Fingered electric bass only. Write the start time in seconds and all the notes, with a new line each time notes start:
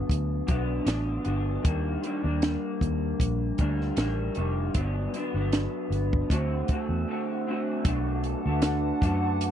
0.09 D2
0.48 B1
0.86 A1
1.26 G1
1.65 D#2
2.24 D#2
2.81 D#2
3.20 A#1
3.59 D2
3.97 A1
4.37 F1
4.75 G1
5.34 G1
5.90 G1
6.30 D2
6.69 muted fingered electric bass stroke
6.89 E2
7.86 B1
8.46 D2
9.02 F#2